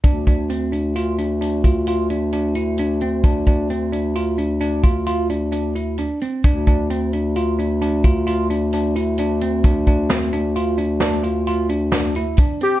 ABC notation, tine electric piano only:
X:1
M:7/4
L:1/8
Q:1/4=131
K:Dm
V:1 name="Tine electric piano"
D D C D F D D F F D D E D C | D D C D F D D F F D D E D C | D D C D F D D F F D D E D C | D D C D F D D F F D D E D C |]